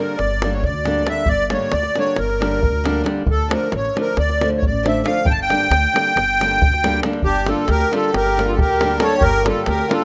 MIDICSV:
0, 0, Header, 1, 6, 480
1, 0, Start_track
1, 0, Key_signature, -2, "minor"
1, 0, Tempo, 441501
1, 1384, Time_signature, 9, 3, 24, 8
1, 10915, End_track
2, 0, Start_track
2, 0, Title_t, "Accordion"
2, 0, Program_c, 0, 21
2, 0, Note_on_c, 0, 70, 75
2, 181, Note_on_c, 0, 74, 85
2, 209, Note_off_c, 0, 70, 0
2, 575, Note_on_c, 0, 73, 59
2, 587, Note_off_c, 0, 74, 0
2, 698, Note_off_c, 0, 73, 0
2, 704, Note_on_c, 0, 74, 80
2, 1182, Note_off_c, 0, 74, 0
2, 1183, Note_on_c, 0, 76, 98
2, 1397, Note_on_c, 0, 74, 101
2, 1398, Note_off_c, 0, 76, 0
2, 1659, Note_on_c, 0, 73, 75
2, 1665, Note_off_c, 0, 74, 0
2, 1875, Note_on_c, 0, 74, 104
2, 1886, Note_off_c, 0, 73, 0
2, 2150, Note_off_c, 0, 74, 0
2, 2165, Note_on_c, 0, 73, 89
2, 2378, Note_on_c, 0, 70, 84
2, 2384, Note_off_c, 0, 73, 0
2, 3287, Note_off_c, 0, 70, 0
2, 3597, Note_on_c, 0, 69, 96
2, 3841, Note_on_c, 0, 70, 71
2, 3845, Note_off_c, 0, 69, 0
2, 4057, Note_off_c, 0, 70, 0
2, 4091, Note_on_c, 0, 73, 78
2, 4314, Note_off_c, 0, 73, 0
2, 4359, Note_on_c, 0, 70, 82
2, 4542, Note_off_c, 0, 70, 0
2, 4558, Note_on_c, 0, 74, 98
2, 4897, Note_off_c, 0, 74, 0
2, 4971, Note_on_c, 0, 73, 50
2, 5054, Note_off_c, 0, 73, 0
2, 5070, Note_on_c, 0, 74, 77
2, 5300, Note_off_c, 0, 74, 0
2, 5302, Note_on_c, 0, 76, 84
2, 5504, Note_on_c, 0, 77, 92
2, 5510, Note_off_c, 0, 76, 0
2, 5711, Note_on_c, 0, 79, 110
2, 5720, Note_off_c, 0, 77, 0
2, 5772, Note_on_c, 0, 81, 94
2, 5788, Note_off_c, 0, 79, 0
2, 5867, Note_off_c, 0, 81, 0
2, 5889, Note_on_c, 0, 79, 115
2, 7612, Note_off_c, 0, 79, 0
2, 7873, Note_on_c, 0, 67, 113
2, 8137, Note_on_c, 0, 69, 76
2, 8146, Note_off_c, 0, 67, 0
2, 8368, Note_off_c, 0, 69, 0
2, 8373, Note_on_c, 0, 70, 109
2, 8642, Note_off_c, 0, 70, 0
2, 8647, Note_on_c, 0, 69, 84
2, 8846, Note_off_c, 0, 69, 0
2, 8873, Note_on_c, 0, 70, 97
2, 9252, Note_on_c, 0, 69, 54
2, 9253, Note_off_c, 0, 70, 0
2, 9347, Note_off_c, 0, 69, 0
2, 9359, Note_on_c, 0, 70, 85
2, 9808, Note_on_c, 0, 73, 103
2, 9831, Note_off_c, 0, 70, 0
2, 10018, Note_on_c, 0, 70, 124
2, 10033, Note_off_c, 0, 73, 0
2, 10298, Note_off_c, 0, 70, 0
2, 10307, Note_on_c, 0, 69, 79
2, 10531, Note_off_c, 0, 69, 0
2, 10531, Note_on_c, 0, 70, 96
2, 10787, Note_on_c, 0, 69, 82
2, 10800, Note_off_c, 0, 70, 0
2, 10915, Note_off_c, 0, 69, 0
2, 10915, End_track
3, 0, Start_track
3, 0, Title_t, "Violin"
3, 0, Program_c, 1, 40
3, 7884, Note_on_c, 1, 62, 73
3, 8125, Note_off_c, 1, 62, 0
3, 8153, Note_on_c, 1, 65, 60
3, 8353, Note_off_c, 1, 65, 0
3, 8363, Note_on_c, 1, 67, 77
3, 8610, Note_off_c, 1, 67, 0
3, 8629, Note_on_c, 1, 65, 59
3, 8835, Note_off_c, 1, 65, 0
3, 8841, Note_on_c, 1, 67, 81
3, 9199, Note_off_c, 1, 67, 0
3, 9218, Note_on_c, 1, 65, 67
3, 9329, Note_off_c, 1, 65, 0
3, 9340, Note_on_c, 1, 67, 86
3, 9774, Note_off_c, 1, 67, 0
3, 9795, Note_on_c, 1, 69, 88
3, 9993, Note_off_c, 1, 69, 0
3, 10000, Note_on_c, 1, 67, 71
3, 10261, Note_off_c, 1, 67, 0
3, 10282, Note_on_c, 1, 65, 73
3, 10496, Note_off_c, 1, 65, 0
3, 10502, Note_on_c, 1, 67, 81
3, 10758, Note_off_c, 1, 67, 0
3, 10769, Note_on_c, 1, 65, 77
3, 10915, Note_off_c, 1, 65, 0
3, 10915, End_track
4, 0, Start_track
4, 0, Title_t, "Nylon-string guitar"
4, 0, Program_c, 2, 24
4, 0, Note_on_c, 2, 50, 54
4, 0, Note_on_c, 2, 55, 47
4, 0, Note_on_c, 2, 58, 55
4, 0, Note_on_c, 2, 62, 53
4, 162, Note_off_c, 2, 50, 0
4, 166, Note_off_c, 2, 55, 0
4, 166, Note_off_c, 2, 58, 0
4, 173, Note_off_c, 2, 62, 0
4, 466, Note_on_c, 2, 50, 58
4, 472, Note_on_c, 2, 55, 46
4, 482, Note_on_c, 2, 58, 51
4, 489, Note_on_c, 2, 62, 63
4, 656, Note_off_c, 2, 50, 0
4, 659, Note_off_c, 2, 55, 0
4, 664, Note_off_c, 2, 58, 0
4, 667, Note_off_c, 2, 62, 0
4, 926, Note_on_c, 2, 50, 69
4, 936, Note_on_c, 2, 55, 57
4, 937, Note_on_c, 2, 58, 52
4, 948, Note_on_c, 2, 62, 68
4, 1118, Note_off_c, 2, 50, 0
4, 1120, Note_off_c, 2, 55, 0
4, 1122, Note_off_c, 2, 58, 0
4, 1128, Note_off_c, 2, 62, 0
4, 1142, Note_on_c, 2, 50, 57
4, 1147, Note_on_c, 2, 55, 50
4, 1154, Note_on_c, 2, 58, 55
4, 1161, Note_on_c, 2, 62, 67
4, 1333, Note_off_c, 2, 50, 0
4, 1335, Note_off_c, 2, 55, 0
4, 1340, Note_off_c, 2, 58, 0
4, 1343, Note_off_c, 2, 62, 0
4, 1632, Note_on_c, 2, 50, 62
4, 1639, Note_on_c, 2, 55, 52
4, 1647, Note_on_c, 2, 58, 51
4, 1652, Note_on_c, 2, 62, 64
4, 1827, Note_off_c, 2, 50, 0
4, 1828, Note_off_c, 2, 55, 0
4, 1834, Note_off_c, 2, 58, 0
4, 1835, Note_off_c, 2, 62, 0
4, 2135, Note_on_c, 2, 50, 62
4, 2146, Note_on_c, 2, 55, 49
4, 2154, Note_on_c, 2, 58, 47
4, 2160, Note_on_c, 2, 62, 60
4, 2324, Note_off_c, 2, 50, 0
4, 2329, Note_off_c, 2, 55, 0
4, 2333, Note_off_c, 2, 58, 0
4, 2336, Note_off_c, 2, 62, 0
4, 2611, Note_on_c, 2, 50, 65
4, 2618, Note_on_c, 2, 55, 52
4, 2625, Note_on_c, 2, 58, 56
4, 2632, Note_on_c, 2, 62, 62
4, 2807, Note_off_c, 2, 50, 0
4, 2811, Note_off_c, 2, 55, 0
4, 2813, Note_off_c, 2, 58, 0
4, 2818, Note_off_c, 2, 62, 0
4, 3086, Note_on_c, 2, 50, 79
4, 3098, Note_on_c, 2, 55, 68
4, 3107, Note_on_c, 2, 58, 72
4, 3110, Note_on_c, 2, 62, 84
4, 3276, Note_off_c, 2, 50, 0
4, 3282, Note_off_c, 2, 55, 0
4, 3286, Note_off_c, 2, 58, 0
4, 3287, Note_off_c, 2, 62, 0
4, 3300, Note_on_c, 2, 50, 71
4, 3311, Note_on_c, 2, 55, 65
4, 3317, Note_on_c, 2, 58, 60
4, 3324, Note_on_c, 2, 62, 75
4, 3492, Note_off_c, 2, 50, 0
4, 3497, Note_off_c, 2, 55, 0
4, 3501, Note_off_c, 2, 58, 0
4, 3503, Note_off_c, 2, 62, 0
4, 3790, Note_on_c, 2, 50, 56
4, 3804, Note_on_c, 2, 53, 56
4, 3809, Note_on_c, 2, 57, 52
4, 3814, Note_on_c, 2, 62, 67
4, 3985, Note_off_c, 2, 50, 0
4, 3992, Note_off_c, 2, 53, 0
4, 3995, Note_off_c, 2, 57, 0
4, 3997, Note_off_c, 2, 62, 0
4, 4301, Note_on_c, 2, 50, 51
4, 4303, Note_on_c, 2, 53, 52
4, 4312, Note_on_c, 2, 57, 50
4, 4317, Note_on_c, 2, 62, 62
4, 4487, Note_off_c, 2, 53, 0
4, 4488, Note_off_c, 2, 50, 0
4, 4492, Note_off_c, 2, 57, 0
4, 4495, Note_off_c, 2, 62, 0
4, 4797, Note_on_c, 2, 50, 52
4, 4805, Note_on_c, 2, 53, 54
4, 4814, Note_on_c, 2, 57, 50
4, 4817, Note_on_c, 2, 62, 63
4, 4981, Note_off_c, 2, 50, 0
4, 4985, Note_off_c, 2, 53, 0
4, 4990, Note_off_c, 2, 57, 0
4, 4991, Note_off_c, 2, 62, 0
4, 5255, Note_on_c, 2, 50, 62
4, 5263, Note_on_c, 2, 53, 59
4, 5273, Note_on_c, 2, 57, 56
4, 5278, Note_on_c, 2, 62, 77
4, 5441, Note_off_c, 2, 50, 0
4, 5445, Note_off_c, 2, 53, 0
4, 5451, Note_off_c, 2, 57, 0
4, 5453, Note_off_c, 2, 62, 0
4, 5478, Note_on_c, 2, 50, 59
4, 5484, Note_on_c, 2, 53, 58
4, 5490, Note_on_c, 2, 57, 53
4, 5494, Note_on_c, 2, 62, 66
4, 5662, Note_off_c, 2, 50, 0
4, 5666, Note_off_c, 2, 53, 0
4, 5667, Note_off_c, 2, 57, 0
4, 5670, Note_off_c, 2, 62, 0
4, 5973, Note_on_c, 2, 50, 55
4, 5981, Note_on_c, 2, 55, 58
4, 5986, Note_on_c, 2, 58, 53
4, 6000, Note_on_c, 2, 62, 65
4, 6158, Note_off_c, 2, 50, 0
4, 6162, Note_off_c, 2, 55, 0
4, 6165, Note_off_c, 2, 58, 0
4, 6171, Note_off_c, 2, 62, 0
4, 6451, Note_on_c, 2, 50, 53
4, 6459, Note_on_c, 2, 55, 51
4, 6467, Note_on_c, 2, 58, 52
4, 6473, Note_on_c, 2, 62, 62
4, 6643, Note_off_c, 2, 50, 0
4, 6647, Note_off_c, 2, 55, 0
4, 6651, Note_off_c, 2, 58, 0
4, 6654, Note_off_c, 2, 62, 0
4, 6961, Note_on_c, 2, 50, 64
4, 6967, Note_on_c, 2, 55, 52
4, 6980, Note_on_c, 2, 58, 61
4, 6985, Note_on_c, 2, 62, 82
4, 7145, Note_off_c, 2, 50, 0
4, 7147, Note_off_c, 2, 55, 0
4, 7155, Note_off_c, 2, 58, 0
4, 7155, Note_off_c, 2, 62, 0
4, 7430, Note_on_c, 2, 50, 74
4, 7435, Note_on_c, 2, 55, 69
4, 7443, Note_on_c, 2, 58, 72
4, 7453, Note_on_c, 2, 62, 77
4, 7611, Note_off_c, 2, 50, 0
4, 7613, Note_off_c, 2, 55, 0
4, 7617, Note_off_c, 2, 58, 0
4, 7622, Note_off_c, 2, 62, 0
4, 7655, Note_on_c, 2, 55, 60
4, 7656, Note_on_c, 2, 50, 68
4, 7658, Note_on_c, 2, 58, 65
4, 7672, Note_on_c, 2, 62, 73
4, 7831, Note_off_c, 2, 55, 0
4, 7833, Note_off_c, 2, 50, 0
4, 7833, Note_off_c, 2, 58, 0
4, 7840, Note_off_c, 2, 62, 0
4, 8113, Note_on_c, 2, 50, 65
4, 8125, Note_on_c, 2, 55, 55
4, 8130, Note_on_c, 2, 58, 54
4, 8138, Note_on_c, 2, 62, 65
4, 8309, Note_off_c, 2, 50, 0
4, 8315, Note_off_c, 2, 55, 0
4, 8318, Note_off_c, 2, 58, 0
4, 8319, Note_off_c, 2, 62, 0
4, 8606, Note_on_c, 2, 50, 62
4, 8616, Note_on_c, 2, 55, 62
4, 8623, Note_on_c, 2, 58, 49
4, 8631, Note_on_c, 2, 62, 73
4, 8801, Note_off_c, 2, 50, 0
4, 8806, Note_off_c, 2, 55, 0
4, 8810, Note_off_c, 2, 58, 0
4, 8812, Note_off_c, 2, 62, 0
4, 9101, Note_on_c, 2, 50, 56
4, 9112, Note_on_c, 2, 55, 50
4, 9120, Note_on_c, 2, 58, 49
4, 9125, Note_on_c, 2, 62, 70
4, 9294, Note_off_c, 2, 50, 0
4, 9301, Note_off_c, 2, 55, 0
4, 9303, Note_off_c, 2, 58, 0
4, 9307, Note_off_c, 2, 62, 0
4, 9579, Note_on_c, 2, 50, 72
4, 9586, Note_on_c, 2, 55, 62
4, 9590, Note_on_c, 2, 58, 64
4, 9602, Note_on_c, 2, 62, 74
4, 9764, Note_off_c, 2, 50, 0
4, 9768, Note_off_c, 2, 58, 0
4, 9769, Note_off_c, 2, 55, 0
4, 9776, Note_off_c, 2, 62, 0
4, 9792, Note_on_c, 2, 50, 51
4, 9795, Note_on_c, 2, 55, 59
4, 9796, Note_on_c, 2, 58, 61
4, 9803, Note_on_c, 2, 62, 69
4, 9980, Note_off_c, 2, 50, 0
4, 9980, Note_off_c, 2, 55, 0
4, 9982, Note_off_c, 2, 58, 0
4, 9985, Note_off_c, 2, 62, 0
4, 10270, Note_on_c, 2, 50, 55
4, 10271, Note_on_c, 2, 55, 56
4, 10276, Note_on_c, 2, 58, 59
4, 10283, Note_on_c, 2, 62, 71
4, 10466, Note_off_c, 2, 55, 0
4, 10467, Note_off_c, 2, 50, 0
4, 10469, Note_off_c, 2, 58, 0
4, 10473, Note_off_c, 2, 62, 0
4, 10755, Note_on_c, 2, 50, 57
4, 10759, Note_on_c, 2, 55, 54
4, 10761, Note_on_c, 2, 58, 57
4, 10773, Note_on_c, 2, 62, 76
4, 10915, Note_off_c, 2, 50, 0
4, 10915, Note_off_c, 2, 55, 0
4, 10915, Note_off_c, 2, 58, 0
4, 10915, Note_off_c, 2, 62, 0
4, 10915, End_track
5, 0, Start_track
5, 0, Title_t, "Upright bass"
5, 0, Program_c, 3, 32
5, 207, Note_on_c, 3, 31, 72
5, 691, Note_on_c, 3, 38, 75
5, 708, Note_off_c, 3, 31, 0
5, 1104, Note_off_c, 3, 38, 0
5, 1375, Note_on_c, 3, 31, 83
5, 1672, Note_off_c, 3, 31, 0
5, 1877, Note_on_c, 3, 38, 90
5, 2037, Note_off_c, 3, 38, 0
5, 2369, Note_on_c, 3, 31, 63
5, 2866, Note_on_c, 3, 38, 73
5, 2882, Note_off_c, 3, 31, 0
5, 3274, Note_off_c, 3, 38, 0
5, 3550, Note_on_c, 3, 38, 71
5, 3843, Note_off_c, 3, 38, 0
5, 4055, Note_on_c, 3, 33, 93
5, 4210, Note_off_c, 3, 33, 0
5, 4536, Note_on_c, 3, 38, 74
5, 5037, Note_on_c, 3, 33, 73
5, 5053, Note_off_c, 3, 38, 0
5, 5443, Note_off_c, 3, 33, 0
5, 5710, Note_on_c, 3, 31, 74
5, 6004, Note_off_c, 3, 31, 0
5, 6201, Note_on_c, 3, 38, 87
5, 6361, Note_off_c, 3, 38, 0
5, 6698, Note_on_c, 3, 31, 80
5, 7186, Note_on_c, 3, 38, 67
5, 7202, Note_off_c, 3, 31, 0
5, 7596, Note_off_c, 3, 38, 0
5, 7873, Note_on_c, 3, 31, 71
5, 8166, Note_off_c, 3, 31, 0
5, 8354, Note_on_c, 3, 38, 102
5, 8516, Note_off_c, 3, 38, 0
5, 8845, Note_on_c, 3, 31, 72
5, 9338, Note_on_c, 3, 38, 62
5, 9354, Note_off_c, 3, 31, 0
5, 9749, Note_off_c, 3, 38, 0
5, 10032, Note_on_c, 3, 31, 78
5, 10325, Note_off_c, 3, 31, 0
5, 10515, Note_on_c, 3, 38, 89
5, 10676, Note_off_c, 3, 38, 0
5, 10915, End_track
6, 0, Start_track
6, 0, Title_t, "Davul"
6, 98, Note_on_c, 9, 37, 20
6, 205, Note_off_c, 9, 37, 0
6, 205, Note_on_c, 9, 37, 47
6, 314, Note_off_c, 9, 37, 0
6, 337, Note_on_c, 9, 37, 21
6, 446, Note_off_c, 9, 37, 0
6, 457, Note_on_c, 9, 37, 66
6, 566, Note_off_c, 9, 37, 0
6, 684, Note_on_c, 9, 43, 68
6, 792, Note_off_c, 9, 43, 0
6, 929, Note_on_c, 9, 37, 60
6, 1038, Note_off_c, 9, 37, 0
6, 1159, Note_on_c, 9, 37, 62
6, 1268, Note_off_c, 9, 37, 0
6, 1368, Note_on_c, 9, 43, 77
6, 1477, Note_off_c, 9, 43, 0
6, 1632, Note_on_c, 9, 37, 65
6, 1741, Note_off_c, 9, 37, 0
6, 1866, Note_on_c, 9, 37, 62
6, 1975, Note_off_c, 9, 37, 0
6, 1993, Note_on_c, 9, 37, 24
6, 2101, Note_off_c, 9, 37, 0
6, 2126, Note_on_c, 9, 37, 53
6, 2235, Note_off_c, 9, 37, 0
6, 2250, Note_on_c, 9, 37, 23
6, 2353, Note_off_c, 9, 37, 0
6, 2353, Note_on_c, 9, 37, 59
6, 2462, Note_off_c, 9, 37, 0
6, 2498, Note_on_c, 9, 37, 23
6, 2606, Note_off_c, 9, 37, 0
6, 2630, Note_on_c, 9, 37, 64
6, 2738, Note_off_c, 9, 37, 0
6, 2853, Note_on_c, 9, 43, 81
6, 2962, Note_off_c, 9, 43, 0
6, 3104, Note_on_c, 9, 37, 67
6, 3213, Note_off_c, 9, 37, 0
6, 3329, Note_on_c, 9, 37, 62
6, 3438, Note_off_c, 9, 37, 0
6, 3550, Note_on_c, 9, 43, 92
6, 3658, Note_off_c, 9, 43, 0
6, 3818, Note_on_c, 9, 37, 84
6, 3927, Note_off_c, 9, 37, 0
6, 4046, Note_on_c, 9, 37, 58
6, 4155, Note_off_c, 9, 37, 0
6, 4186, Note_on_c, 9, 37, 23
6, 4295, Note_off_c, 9, 37, 0
6, 4314, Note_on_c, 9, 37, 60
6, 4423, Note_off_c, 9, 37, 0
6, 4424, Note_on_c, 9, 37, 21
6, 4532, Note_off_c, 9, 37, 0
6, 4534, Note_on_c, 9, 37, 57
6, 4643, Note_off_c, 9, 37, 0
6, 4671, Note_on_c, 9, 37, 23
6, 4780, Note_off_c, 9, 37, 0
6, 4799, Note_on_c, 9, 37, 64
6, 4908, Note_off_c, 9, 37, 0
6, 5030, Note_on_c, 9, 43, 83
6, 5138, Note_off_c, 9, 43, 0
6, 5281, Note_on_c, 9, 37, 63
6, 5390, Note_off_c, 9, 37, 0
6, 5498, Note_on_c, 9, 37, 62
6, 5607, Note_off_c, 9, 37, 0
6, 5719, Note_on_c, 9, 43, 99
6, 5828, Note_off_c, 9, 43, 0
6, 5983, Note_on_c, 9, 37, 65
6, 6092, Note_off_c, 9, 37, 0
6, 6092, Note_on_c, 9, 37, 27
6, 6201, Note_off_c, 9, 37, 0
6, 6213, Note_on_c, 9, 37, 67
6, 6322, Note_off_c, 9, 37, 0
6, 6479, Note_on_c, 9, 37, 68
6, 6587, Note_off_c, 9, 37, 0
6, 6587, Note_on_c, 9, 37, 23
6, 6696, Note_off_c, 9, 37, 0
6, 6708, Note_on_c, 9, 37, 62
6, 6817, Note_off_c, 9, 37, 0
6, 6972, Note_on_c, 9, 37, 70
6, 7080, Note_off_c, 9, 37, 0
6, 7080, Note_on_c, 9, 37, 25
6, 7189, Note_off_c, 9, 37, 0
6, 7194, Note_on_c, 9, 43, 96
6, 7303, Note_off_c, 9, 43, 0
6, 7323, Note_on_c, 9, 37, 23
6, 7432, Note_off_c, 9, 37, 0
6, 7439, Note_on_c, 9, 37, 66
6, 7542, Note_off_c, 9, 37, 0
6, 7542, Note_on_c, 9, 37, 28
6, 7646, Note_off_c, 9, 37, 0
6, 7646, Note_on_c, 9, 37, 73
6, 7755, Note_off_c, 9, 37, 0
6, 7755, Note_on_c, 9, 37, 31
6, 7853, Note_on_c, 9, 43, 74
6, 7864, Note_off_c, 9, 37, 0
6, 7962, Note_off_c, 9, 43, 0
6, 8116, Note_on_c, 9, 37, 61
6, 8224, Note_off_c, 9, 37, 0
6, 8348, Note_on_c, 9, 37, 51
6, 8457, Note_off_c, 9, 37, 0
6, 8485, Note_on_c, 9, 37, 25
6, 8594, Note_off_c, 9, 37, 0
6, 8620, Note_on_c, 9, 37, 53
6, 8729, Note_off_c, 9, 37, 0
6, 8741, Note_on_c, 9, 37, 23
6, 8849, Note_off_c, 9, 37, 0
6, 8854, Note_on_c, 9, 37, 68
6, 8963, Note_off_c, 9, 37, 0
6, 8993, Note_on_c, 9, 37, 23
6, 9102, Note_off_c, 9, 37, 0
6, 9122, Note_on_c, 9, 37, 58
6, 9230, Note_off_c, 9, 37, 0
6, 9336, Note_on_c, 9, 43, 91
6, 9445, Note_off_c, 9, 43, 0
6, 9577, Note_on_c, 9, 37, 64
6, 9686, Note_off_c, 9, 37, 0
6, 9785, Note_on_c, 9, 37, 74
6, 9894, Note_off_c, 9, 37, 0
6, 10015, Note_on_c, 9, 43, 88
6, 10123, Note_off_c, 9, 43, 0
6, 10283, Note_on_c, 9, 37, 75
6, 10392, Note_off_c, 9, 37, 0
6, 10506, Note_on_c, 9, 37, 58
6, 10615, Note_off_c, 9, 37, 0
6, 10642, Note_on_c, 9, 37, 27
6, 10750, Note_off_c, 9, 37, 0
6, 10775, Note_on_c, 9, 37, 65
6, 10884, Note_off_c, 9, 37, 0
6, 10915, End_track
0, 0, End_of_file